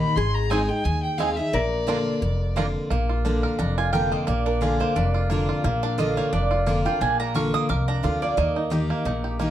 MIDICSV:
0, 0, Header, 1, 7, 480
1, 0, Start_track
1, 0, Tempo, 342075
1, 233, Time_signature, 4, 2, 24, 8
1, 13336, End_track
2, 0, Start_track
2, 0, Title_t, "Fiddle"
2, 0, Program_c, 0, 110
2, 0, Note_on_c, 0, 83, 101
2, 224, Note_on_c, 0, 84, 96
2, 245, Note_off_c, 0, 83, 0
2, 478, Note_on_c, 0, 82, 97
2, 499, Note_off_c, 0, 84, 0
2, 704, Note_on_c, 0, 80, 88
2, 725, Note_off_c, 0, 82, 0
2, 962, Note_on_c, 0, 79, 97
2, 983, Note_off_c, 0, 80, 0
2, 1182, Note_on_c, 0, 80, 99
2, 1204, Note_off_c, 0, 79, 0
2, 1435, Note_off_c, 0, 80, 0
2, 1443, Note_on_c, 0, 79, 89
2, 1658, Note_on_c, 0, 77, 84
2, 1679, Note_off_c, 0, 79, 0
2, 1916, Note_on_c, 0, 76, 98
2, 1937, Note_off_c, 0, 77, 0
2, 2153, Note_on_c, 0, 74, 86
2, 2174, Note_off_c, 0, 76, 0
2, 3595, Note_off_c, 0, 74, 0
2, 13336, End_track
3, 0, Start_track
3, 0, Title_t, "Mandolin"
3, 0, Program_c, 1, 25
3, 705, Note_on_c, 1, 60, 100
3, 712, Note_on_c, 1, 68, 85
3, 714, Note_on_c, 1, 75, 98
3, 722, Note_on_c, 1, 80, 103
3, 847, Note_off_c, 1, 60, 0
3, 851, Note_off_c, 1, 68, 0
3, 852, Note_off_c, 1, 75, 0
3, 856, Note_off_c, 1, 80, 0
3, 1663, Note_on_c, 1, 60, 92
3, 1667, Note_on_c, 1, 68, 95
3, 1670, Note_on_c, 1, 75, 92
3, 1680, Note_on_c, 1, 80, 100
3, 1807, Note_off_c, 1, 60, 0
3, 1809, Note_off_c, 1, 68, 0
3, 1810, Note_off_c, 1, 75, 0
3, 1816, Note_off_c, 1, 80, 0
3, 2622, Note_on_c, 1, 58, 81
3, 2631, Note_on_c, 1, 65, 94
3, 2637, Note_on_c, 1, 74, 91
3, 2640, Note_on_c, 1, 82, 98
3, 2767, Note_off_c, 1, 58, 0
3, 2771, Note_off_c, 1, 65, 0
3, 2774, Note_off_c, 1, 74, 0
3, 2776, Note_off_c, 1, 82, 0
3, 3590, Note_on_c, 1, 58, 87
3, 3595, Note_on_c, 1, 65, 91
3, 3602, Note_on_c, 1, 74, 91
3, 3605, Note_on_c, 1, 82, 101
3, 3731, Note_off_c, 1, 58, 0
3, 3734, Note_off_c, 1, 65, 0
3, 3737, Note_off_c, 1, 74, 0
3, 3739, Note_off_c, 1, 82, 0
3, 5033, Note_on_c, 1, 82, 88
3, 5289, Note_off_c, 1, 82, 0
3, 5302, Note_on_c, 1, 80, 88
3, 5504, Note_off_c, 1, 80, 0
3, 5510, Note_on_c, 1, 79, 90
3, 5767, Note_off_c, 1, 79, 0
3, 5780, Note_on_c, 1, 75, 80
3, 5988, Note_off_c, 1, 75, 0
3, 5993, Note_on_c, 1, 74, 78
3, 6249, Note_off_c, 1, 74, 0
3, 6260, Note_on_c, 1, 70, 89
3, 6471, Note_off_c, 1, 70, 0
3, 6475, Note_on_c, 1, 68, 76
3, 6730, Note_off_c, 1, 68, 0
3, 6736, Note_on_c, 1, 72, 82
3, 6949, Note_off_c, 1, 72, 0
3, 6957, Note_on_c, 1, 74, 83
3, 7861, Note_off_c, 1, 74, 0
3, 8178, Note_on_c, 1, 77, 95
3, 8390, Note_off_c, 1, 77, 0
3, 8401, Note_on_c, 1, 75, 80
3, 8653, Note_off_c, 1, 75, 0
3, 8659, Note_on_c, 1, 73, 92
3, 8870, Note_off_c, 1, 73, 0
3, 8879, Note_on_c, 1, 74, 85
3, 9568, Note_off_c, 1, 74, 0
3, 9621, Note_on_c, 1, 79, 96
3, 9831, Note_off_c, 1, 79, 0
3, 9845, Note_on_c, 1, 80, 87
3, 10092, Note_off_c, 1, 80, 0
3, 10097, Note_on_c, 1, 82, 100
3, 10309, Note_off_c, 1, 82, 0
3, 10316, Note_on_c, 1, 85, 97
3, 10570, Note_off_c, 1, 85, 0
3, 10580, Note_on_c, 1, 87, 115
3, 10790, Note_off_c, 1, 87, 0
3, 10796, Note_on_c, 1, 86, 89
3, 11049, Note_off_c, 1, 86, 0
3, 11057, Note_on_c, 1, 82, 96
3, 11269, Note_off_c, 1, 82, 0
3, 11274, Note_on_c, 1, 77, 84
3, 11528, Note_off_c, 1, 77, 0
3, 11535, Note_on_c, 1, 74, 91
3, 11748, Note_off_c, 1, 74, 0
3, 11753, Note_on_c, 1, 75, 83
3, 12657, Note_off_c, 1, 75, 0
3, 13336, End_track
4, 0, Start_track
4, 0, Title_t, "Resonator guitar played with a steel bar"
4, 0, Program_c, 2, 25
4, 0, Note_on_c, 2, 70, 97
4, 241, Note_on_c, 2, 68, 96
4, 351, Note_off_c, 2, 70, 0
4, 2157, Note_on_c, 2, 70, 89
4, 2216, Note_off_c, 2, 68, 0
4, 3803, Note_off_c, 2, 70, 0
4, 13336, End_track
5, 0, Start_track
5, 0, Title_t, "Five-string banjo"
5, 0, Program_c, 3, 105
5, 716, Note_on_c, 3, 60, 68
5, 721, Note_on_c, 3, 63, 61
5, 731, Note_on_c, 3, 68, 63
5, 830, Note_off_c, 3, 60, 0
5, 834, Note_off_c, 3, 63, 0
5, 836, Note_off_c, 3, 68, 0
5, 1685, Note_on_c, 3, 60, 64
5, 1689, Note_on_c, 3, 63, 65
5, 1697, Note_on_c, 3, 68, 64
5, 1795, Note_off_c, 3, 60, 0
5, 1796, Note_off_c, 3, 63, 0
5, 1801, Note_off_c, 3, 68, 0
5, 2640, Note_on_c, 3, 58, 66
5, 2645, Note_on_c, 3, 62, 66
5, 2650, Note_on_c, 3, 65, 60
5, 2753, Note_off_c, 3, 58, 0
5, 2755, Note_off_c, 3, 62, 0
5, 2758, Note_off_c, 3, 65, 0
5, 3602, Note_on_c, 3, 58, 64
5, 3609, Note_on_c, 3, 62, 68
5, 3616, Note_on_c, 3, 65, 64
5, 3714, Note_off_c, 3, 58, 0
5, 3718, Note_off_c, 3, 62, 0
5, 3720, Note_off_c, 3, 65, 0
5, 4076, Note_on_c, 3, 58, 74
5, 4342, Note_on_c, 3, 65, 54
5, 4557, Note_on_c, 3, 62, 55
5, 4815, Note_on_c, 3, 70, 58
5, 5027, Note_off_c, 3, 62, 0
5, 5033, Note_on_c, 3, 62, 65
5, 5295, Note_off_c, 3, 65, 0
5, 5301, Note_on_c, 3, 65, 56
5, 5506, Note_off_c, 3, 70, 0
5, 5511, Note_on_c, 3, 70, 60
5, 5770, Note_off_c, 3, 58, 0
5, 5775, Note_on_c, 3, 58, 58
5, 5985, Note_off_c, 3, 58, 0
5, 5991, Note_on_c, 3, 58, 76
5, 6250, Note_off_c, 3, 62, 0
5, 6256, Note_on_c, 3, 62, 55
5, 6474, Note_off_c, 3, 65, 0
5, 6479, Note_on_c, 3, 65, 56
5, 6740, Note_off_c, 3, 58, 0
5, 6745, Note_on_c, 3, 58, 71
5, 6954, Note_off_c, 3, 62, 0
5, 6960, Note_on_c, 3, 62, 65
5, 7211, Note_off_c, 3, 65, 0
5, 7217, Note_on_c, 3, 65, 58
5, 7427, Note_off_c, 3, 58, 0
5, 7433, Note_on_c, 3, 58, 75
5, 7476, Note_off_c, 3, 70, 0
5, 7696, Note_off_c, 3, 65, 0
5, 7701, Note_on_c, 3, 65, 64
5, 7913, Note_off_c, 3, 58, 0
5, 7918, Note_on_c, 3, 58, 77
5, 8175, Note_off_c, 3, 62, 0
5, 8181, Note_on_c, 3, 62, 59
5, 8391, Note_off_c, 3, 65, 0
5, 8397, Note_on_c, 3, 65, 58
5, 8655, Note_off_c, 3, 58, 0
5, 8661, Note_on_c, 3, 58, 75
5, 8871, Note_off_c, 3, 62, 0
5, 8877, Note_on_c, 3, 62, 66
5, 9086, Note_off_c, 3, 65, 0
5, 9132, Note_on_c, 3, 65, 56
5, 9352, Note_off_c, 3, 58, 0
5, 9357, Note_on_c, 3, 58, 72
5, 9566, Note_off_c, 3, 62, 0
5, 9607, Note_off_c, 3, 65, 0
5, 9624, Note_on_c, 3, 65, 60
5, 9844, Note_on_c, 3, 62, 66
5, 10098, Note_off_c, 3, 58, 0
5, 10104, Note_on_c, 3, 58, 57
5, 10275, Note_off_c, 3, 65, 0
5, 10320, Note_on_c, 3, 70, 59
5, 10529, Note_off_c, 3, 62, 0
5, 10573, Note_off_c, 3, 58, 0
5, 10578, Note_on_c, 3, 58, 68
5, 10793, Note_off_c, 3, 70, 0
5, 10799, Note_on_c, 3, 70, 62
5, 11062, Note_on_c, 3, 62, 57
5, 11279, Note_on_c, 3, 65, 56
5, 11537, Note_off_c, 3, 58, 0
5, 11543, Note_on_c, 3, 58, 58
5, 11713, Note_off_c, 3, 62, 0
5, 11752, Note_off_c, 3, 58, 0
5, 11757, Note_off_c, 3, 65, 0
5, 11757, Note_on_c, 3, 58, 78
5, 12015, Note_on_c, 3, 63, 57
5, 12230, Note_on_c, 3, 67, 57
5, 12485, Note_off_c, 3, 58, 0
5, 12490, Note_on_c, 3, 58, 72
5, 12710, Note_off_c, 3, 63, 0
5, 12715, Note_on_c, 3, 63, 64
5, 12764, Note_off_c, 3, 70, 0
5, 12921, Note_off_c, 3, 67, 0
5, 12967, Note_on_c, 3, 67, 60
5, 13147, Note_off_c, 3, 58, 0
5, 13185, Note_on_c, 3, 58, 74
5, 13336, Note_off_c, 3, 58, 0
5, 13336, Note_off_c, 3, 63, 0
5, 13336, Note_off_c, 3, 67, 0
5, 13336, End_track
6, 0, Start_track
6, 0, Title_t, "Steel-string acoustic guitar"
6, 0, Program_c, 4, 25
6, 0, Note_on_c, 4, 46, 89
6, 0, Note_on_c, 4, 51, 83
6, 0, Note_on_c, 4, 58, 78
6, 0, Note_on_c, 4, 63, 97
6, 0, Note_on_c, 4, 67, 95
6, 191, Note_off_c, 4, 46, 0
6, 212, Note_off_c, 4, 51, 0
6, 217, Note_off_c, 4, 58, 0
6, 224, Note_off_c, 4, 63, 0
6, 226, Note_off_c, 4, 67, 0
6, 245, Note_on_c, 4, 44, 86
6, 711, Note_on_c, 4, 56, 87
6, 724, Note_on_c, 4, 60, 80
6, 736, Note_on_c, 4, 63, 93
6, 743, Note_on_c, 4, 68, 88
6, 949, Note_off_c, 4, 68, 0
6, 964, Note_off_c, 4, 56, 0
6, 966, Note_on_c, 4, 68, 60
6, 970, Note_off_c, 4, 60, 0
6, 976, Note_off_c, 4, 63, 0
6, 996, Note_on_c, 4, 63, 48
6, 1156, Note_off_c, 4, 44, 0
6, 1180, Note_off_c, 4, 68, 0
6, 1193, Note_on_c, 4, 51, 93
6, 1195, Note_off_c, 4, 63, 0
6, 1656, Note_on_c, 4, 56, 80
6, 1668, Note_on_c, 4, 60, 75
6, 1675, Note_on_c, 4, 63, 83
6, 1689, Note_on_c, 4, 68, 96
6, 1903, Note_off_c, 4, 68, 0
6, 1917, Note_off_c, 4, 56, 0
6, 1920, Note_on_c, 4, 68, 62
6, 1923, Note_off_c, 4, 60, 0
6, 1926, Note_off_c, 4, 63, 0
6, 1951, Note_on_c, 4, 63, 51
6, 2111, Note_off_c, 4, 51, 0
6, 2138, Note_off_c, 4, 68, 0
6, 2152, Note_on_c, 4, 46, 87
6, 2153, Note_off_c, 4, 63, 0
6, 2620, Note_on_c, 4, 50, 81
6, 2630, Note_on_c, 4, 58, 94
6, 2642, Note_on_c, 4, 62, 94
6, 2647, Note_on_c, 4, 65, 93
6, 3070, Note_off_c, 4, 46, 0
6, 3086, Note_off_c, 4, 50, 0
6, 3091, Note_off_c, 4, 58, 0
6, 3097, Note_off_c, 4, 62, 0
6, 3100, Note_off_c, 4, 65, 0
6, 3115, Note_on_c, 4, 41, 83
6, 3591, Note_on_c, 4, 50, 77
6, 3606, Note_on_c, 4, 58, 87
6, 3615, Note_on_c, 4, 62, 84
6, 3624, Note_on_c, 4, 65, 90
6, 4032, Note_off_c, 4, 41, 0
6, 4052, Note_off_c, 4, 50, 0
6, 4059, Note_off_c, 4, 58, 0
6, 4064, Note_off_c, 4, 62, 0
6, 4068, Note_off_c, 4, 65, 0
6, 4088, Note_on_c, 4, 46, 91
6, 4557, Note_on_c, 4, 50, 86
6, 4567, Note_on_c, 4, 58, 93
6, 4574, Note_on_c, 4, 62, 89
6, 4582, Note_on_c, 4, 65, 93
6, 4999, Note_off_c, 4, 46, 0
6, 5015, Note_off_c, 4, 50, 0
6, 5020, Note_off_c, 4, 58, 0
6, 5024, Note_off_c, 4, 62, 0
6, 5028, Note_off_c, 4, 65, 0
6, 5043, Note_on_c, 4, 41, 89
6, 5513, Note_on_c, 4, 50, 80
6, 5527, Note_on_c, 4, 58, 82
6, 5535, Note_on_c, 4, 62, 82
6, 5544, Note_on_c, 4, 65, 97
6, 5956, Note_off_c, 4, 41, 0
6, 5973, Note_off_c, 4, 50, 0
6, 5980, Note_off_c, 4, 58, 0
6, 5984, Note_off_c, 4, 62, 0
6, 5989, Note_off_c, 4, 65, 0
6, 6003, Note_on_c, 4, 46, 87
6, 6466, Note_on_c, 4, 50, 84
6, 6478, Note_on_c, 4, 58, 84
6, 6491, Note_on_c, 4, 62, 100
6, 6498, Note_on_c, 4, 65, 96
6, 6916, Note_off_c, 4, 46, 0
6, 6930, Note_off_c, 4, 50, 0
6, 6936, Note_off_c, 4, 58, 0
6, 6942, Note_off_c, 4, 62, 0
6, 6946, Note_off_c, 4, 65, 0
6, 6963, Note_on_c, 4, 41, 90
6, 7436, Note_on_c, 4, 50, 82
6, 7450, Note_on_c, 4, 58, 88
6, 7454, Note_on_c, 4, 62, 91
6, 7464, Note_on_c, 4, 65, 87
6, 7876, Note_off_c, 4, 41, 0
6, 7895, Note_off_c, 4, 50, 0
6, 7902, Note_off_c, 4, 58, 0
6, 7904, Note_off_c, 4, 62, 0
6, 7909, Note_off_c, 4, 65, 0
6, 7919, Note_on_c, 4, 46, 89
6, 8389, Note_on_c, 4, 50, 90
6, 8405, Note_on_c, 4, 58, 92
6, 8412, Note_on_c, 4, 62, 90
6, 8421, Note_on_c, 4, 65, 105
6, 8834, Note_off_c, 4, 46, 0
6, 8851, Note_off_c, 4, 50, 0
6, 8859, Note_off_c, 4, 58, 0
6, 8863, Note_off_c, 4, 62, 0
6, 8867, Note_off_c, 4, 65, 0
6, 8877, Note_on_c, 4, 41, 98
6, 9351, Note_on_c, 4, 50, 86
6, 9360, Note_on_c, 4, 58, 88
6, 9372, Note_on_c, 4, 62, 87
6, 9384, Note_on_c, 4, 65, 88
6, 9596, Note_off_c, 4, 65, 0
6, 9605, Note_off_c, 4, 50, 0
6, 9610, Note_off_c, 4, 58, 0
6, 9613, Note_on_c, 4, 65, 60
6, 9616, Note_off_c, 4, 62, 0
6, 9645, Note_on_c, 4, 62, 48
6, 9793, Note_off_c, 4, 41, 0
6, 9825, Note_off_c, 4, 65, 0
6, 9839, Note_on_c, 4, 46, 89
6, 9841, Note_off_c, 4, 62, 0
6, 10307, Note_on_c, 4, 50, 84
6, 10319, Note_on_c, 4, 58, 88
6, 10326, Note_on_c, 4, 62, 87
6, 10336, Note_on_c, 4, 65, 95
6, 10753, Note_off_c, 4, 46, 0
6, 10769, Note_off_c, 4, 50, 0
6, 10775, Note_off_c, 4, 58, 0
6, 10779, Note_off_c, 4, 62, 0
6, 10784, Note_off_c, 4, 65, 0
6, 10789, Note_on_c, 4, 41, 88
6, 11266, Note_on_c, 4, 50, 73
6, 11279, Note_on_c, 4, 58, 80
6, 11284, Note_on_c, 4, 62, 80
6, 11296, Note_on_c, 4, 65, 92
6, 11516, Note_off_c, 4, 65, 0
6, 11522, Note_off_c, 4, 50, 0
6, 11528, Note_off_c, 4, 58, 0
6, 11531, Note_off_c, 4, 62, 0
6, 11533, Note_on_c, 4, 65, 58
6, 11564, Note_on_c, 4, 62, 52
6, 11708, Note_off_c, 4, 41, 0
6, 11744, Note_off_c, 4, 65, 0
6, 11747, Note_on_c, 4, 51, 91
6, 11760, Note_off_c, 4, 62, 0
6, 12194, Note_off_c, 4, 51, 0
6, 12211, Note_on_c, 4, 51, 81
6, 12224, Note_on_c, 4, 58, 95
6, 12235, Note_on_c, 4, 63, 98
6, 12245, Note_on_c, 4, 67, 90
6, 12680, Note_off_c, 4, 51, 0
6, 12687, Note_off_c, 4, 58, 0
6, 12692, Note_off_c, 4, 63, 0
6, 12697, Note_off_c, 4, 67, 0
6, 12704, Note_on_c, 4, 46, 91
6, 13182, Note_on_c, 4, 51, 84
6, 13193, Note_on_c, 4, 58, 78
6, 13206, Note_on_c, 4, 63, 88
6, 13214, Note_on_c, 4, 67, 82
6, 13336, Note_off_c, 4, 46, 0
6, 13336, Note_off_c, 4, 51, 0
6, 13336, Note_off_c, 4, 58, 0
6, 13336, Note_off_c, 4, 63, 0
6, 13336, Note_off_c, 4, 67, 0
6, 13336, End_track
7, 0, Start_track
7, 0, Title_t, "Upright bass"
7, 0, Program_c, 5, 32
7, 227, Note_on_c, 5, 32, 93
7, 970, Note_off_c, 5, 32, 0
7, 1193, Note_on_c, 5, 39, 88
7, 1934, Note_off_c, 5, 39, 0
7, 2155, Note_on_c, 5, 34, 94
7, 2896, Note_off_c, 5, 34, 0
7, 3111, Note_on_c, 5, 29, 83
7, 3854, Note_off_c, 5, 29, 0
7, 4077, Note_on_c, 5, 34, 94
7, 4817, Note_off_c, 5, 34, 0
7, 5041, Note_on_c, 5, 29, 84
7, 5780, Note_off_c, 5, 29, 0
7, 6000, Note_on_c, 5, 34, 93
7, 6739, Note_off_c, 5, 34, 0
7, 6960, Note_on_c, 5, 29, 84
7, 7699, Note_off_c, 5, 29, 0
7, 7915, Note_on_c, 5, 34, 94
7, 8656, Note_off_c, 5, 34, 0
7, 8879, Note_on_c, 5, 29, 86
7, 9618, Note_off_c, 5, 29, 0
7, 9832, Note_on_c, 5, 34, 94
7, 10573, Note_off_c, 5, 34, 0
7, 10797, Note_on_c, 5, 36, 85
7, 11204, Note_off_c, 5, 36, 0
7, 11277, Note_on_c, 5, 38, 82
7, 11684, Note_off_c, 5, 38, 0
7, 11752, Note_on_c, 5, 39, 92
7, 12492, Note_off_c, 5, 39, 0
7, 12707, Note_on_c, 5, 34, 90
7, 13336, Note_off_c, 5, 34, 0
7, 13336, End_track
0, 0, End_of_file